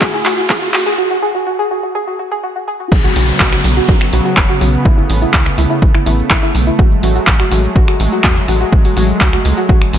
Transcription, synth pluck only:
0.01 F#4
0.14 G#4
0.26 F#4
0.38 F#4
0.50 G#4
0.62 F#4
0.74 F#4
0.86 G#4
0.98 F#4
1.11 F#4
1.22 G#4
1.35 F#4
1.47 F#4
1.59 G#4
1.71 F#4
1.83 F#4
1.95 G#4
2.07 F#4
2.19 F#4
2.32 G#4
2.43 F#4
2.56 F#4
2.68 G#4
2.80 F#4
3.04 F#4
3.16 F#4
3.40 F#4
3.53 F#4
3.77 F#4
3.89 F#4
4.13 F#4
4.25 F#4
4.49 F#4
4.61 F#4
4.85 E4
4.98 E4
5.22 E4
5.34 E4
5.58 E4
5.70 E4
5.95 E4
6.06 E4
6.30 E4
6.43 E4
6.67 E4
6.79 F#4
7.03 F#4
7.15 F#4
7.40 F#4
7.52 F#4
7.76 F#4
7.88 F#4
8.12 F#4
8.24 F#4
8.48 F#4
8.61 F#4
8.85 F#4
8.97 F#4
9.21 F#4
9.33 F#4
9.57 F#4
9.69 F#4

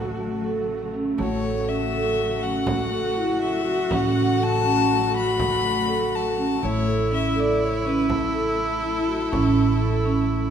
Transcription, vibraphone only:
Already playing: F#4
0.20 A3
0.44 A4
0.93 C#4
1.18 A3
1.42 A4
1.68 C#4
1.93 A4
2.42 C#4
2.92 A4
3.16 E4
3.65 F#4
3.91 C#4
4.40 A4
4.65 C#4
5.15 F#4
5.64 A3
5.89 A4
6.37 C#4
6.63 A3
6.87 A4
7.12 C#4
7.36 A4
7.85 C#4
8.34 A4
8.58 E4
9.08 F#4
9.32 C#4
9.81 A4
10.05 C#4

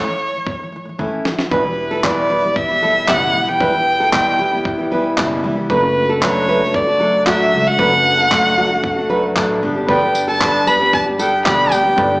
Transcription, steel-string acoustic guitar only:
0.06 A2 E3
0.33 A2 E3
0.60 A2 E3
0.72 A2 E3
0.85 A2 E3
0.98 A2 E3 A3 C#4 E4
1.25 A2 E3
1.52 E2 B2 E3 G3 B3 E4
1.64 E3 G3 B3 E4
2.04 E2 B2 E3 G3 B3 E4
2.29 E3 G3 B3 E4
2.42 E3 G3 B3 E4
2.69 E3 G3 B3 E4
2.82 E3 G3 B3 E4
3.08 E2 B2 E3 G3 B3 E4
3.34 E3 G3 B3 E4
3.47 E3 G3 B3 E4
3.60 E2 B2 E3 G3 B3 E4
3.73 E3 G3 B3 E4
4.12 E2 B2 E3 G3 B3 E4
4.38 E3 G3 B3 E4
4.51 E3 G3 B3 E4
4.77 E3 G3 B3 E4
4.91 E3 G3 B3 E4
5.17 E2 B2 E3 G3 B3 E4
5.43 E3 G3 B3 E4
5.56 E3 G3 B3 E4
5.69 F#3 A3 D4 F#4
5.82 A3 D4 F#4
6.22 F#3 A3 D4 F#4
6.47 F#3 A3 D4 F#4
6.60 A3 D4 F#4
6.87 A3 D4 F#4
6.99 F#3 A3 D4 F#4
7.26 F#3 A3 D4 F#4
7.52 F#3 A3 D4 F#4
7.65 A3 D4 F#4
7.79 F#3 A3 D4 F#4
7.92 A3 D4 F#4
8.31 F#3 A3 D4 F#4
8.57 F#3 A3 D4 F#4
8.70 A3 D4 F#4
8.96 A3 D4 F#4
9.09 F#3 A3 D4 F#4
9.36 F#3 A3 D4 F#4
9.62 G3 B3 D4 G4
9.75 G3 B3 D4 G4
9.88 G2 D3 G3 B3 D4 G4
10.01 G3 B3 D4 G4
10.41 G2 D3 G3 B3 D4 G4
10.67 G3 B3 D4 G4
10.79 G3 B3 D4 G4
11.06 G3 B3 D4 G4
11.18 G3 B3 D4 G4
11.45 G2 D3 G3 B3 D4 G4
11.70 G3 B3 D4 G4
11.83 G3 B3 D4 G4
11.96 G2 D3 G3 B3 D4 G4
12.09 G3 B3 D4 G4

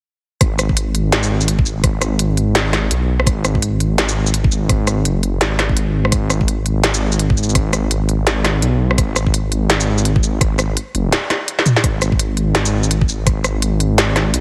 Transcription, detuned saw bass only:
0.41 G#1
1.13 G#1
1.66 G#1
2.19 G#1
2.91 B1
3.27 G#1
3.98 G#1
4.52 G#1
5.05 F#1
5.41 G#1
6.84 G#1
7.38 G#1
7.91 G#1
8.62 B1
8.98 G#1
9.69 G#1
10.23 G#1
10.94 F#1
11.84 G#1
13.09 G#1
13.62 G#1
14.34 B1

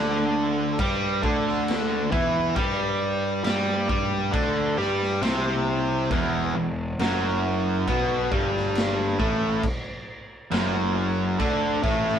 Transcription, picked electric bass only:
Already playing: D2
0.79 G2
1.23 D2
2.12 E2
2.56 G2
3.44 G2
3.89 G2
4.34 D2
4.78 G2
5.22 C2
6.11 E1
6.55 E1
6.99 F#1
7.88 B1
8.32 G1
9.20 A1
10.51 F#1
11.40 D2
11.83 A1

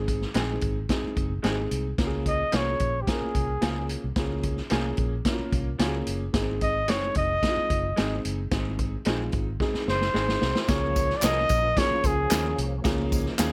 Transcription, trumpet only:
2.28 D#5
2.56 C#5
3.02 G4
3.09 G#4
6.62 D#5
6.90 C#5
7.17 D#5
9.89 C5
10.62 C5
10.69 C#5
11.17 D5
11.25 D#5
11.78 C#5
12.06 G#4

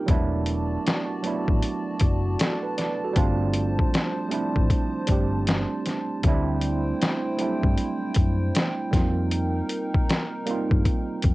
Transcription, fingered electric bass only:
0.08 E1
1.48 A1
2.01 F#1
3.17 G1
4.56 A1
5.09 G1
6.24 D2
7.64 G2
8.17 F#2
8.93 F2
10.71 G2
11.24 F2

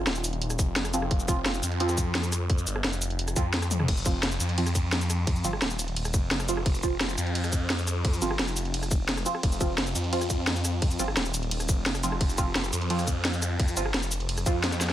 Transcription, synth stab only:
0.94 F3 C4 F4
1.28 F3 C4 F4
1.80 F3 C4 F4
3.36 F3 C4 F4
4.06 F3 C4 F4
4.58 F3 C4 F4
5.44 F3 C4 F4
6.49 F3 C4 F4
6.83 F3 C4 F4
8.22 F3 C4 F4
9.26 F3 C4 F4
9.61 F3 C4 F4
10.13 F3 C4 F4
10.99 F3 C4 F4
12.03 F3 C4 F4
12.38 F3 C4 F4
12.90 F3 C4 F4
13.77 F3 C4 F4
14.46 F3 C4 F4

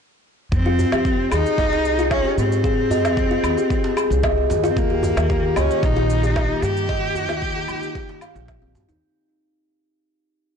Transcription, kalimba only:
0.66 F4
0.93 G4
1.32 G#4
1.58 D#5
1.99 F4
2.25 G4
2.64 G#4
2.91 D#5
3.31 F4
3.58 G4
3.97 G#4
4.23 D#5
4.64 F4
4.90 G4
5.30 G4
5.56 D#5
5.96 F4
6.23 G4
6.63 G4
6.89 D#5
7.30 F4
7.56 G4
7.96 G4
8.22 F5
8.36 F4
8.62 C4
8.89 D#4

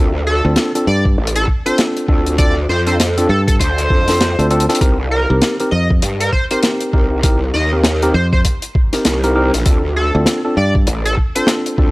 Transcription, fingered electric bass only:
0.45 D2
0.87 G2
3.29 G2
4.39 D2
5.30 C2
5.72 F2
8.14 F2
10.15 D2
10.57 G2

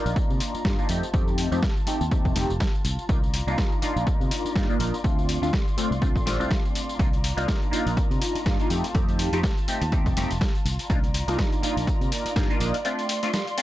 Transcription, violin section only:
Already playing: F4 D5 A#5
0.89 F4 A5
3.09 D5 A#5
5.04 C6
6.99 A#5
8.71 A5
10.90 D5 A#5
12.85 F4 C6

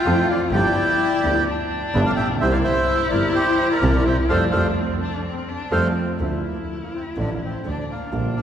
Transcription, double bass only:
0.05 F2
0.51 G1
1.23 D2
1.94 G1
2.18 A#1
2.41 C2
3.11 G1
3.82 C2
4.29 F2
4.53 F2
5.72 F2
6.20 D2
7.17 A1
7.65 D2
8.13 A#1

